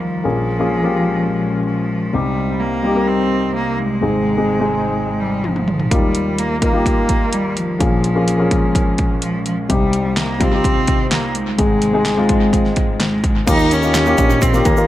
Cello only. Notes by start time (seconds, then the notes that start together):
0.00 F3
1.66 F3
2.14 G3
2.60 A#3
3.08 C4
3.55 A#3
3.79 G#3
5.20 G3
5.44 F3
5.92 G3
6.39 A#3
6.62 A#3
7.33 G3
7.57 F3
9.22 F3
9.46 F3
9.70 G3
10.18 A#3
10.42 C4
11.12 A#3
11.35 G#3
13.01 G#3
13.47 D#4
13.72 C#4
14.42 C4
14.66 A#3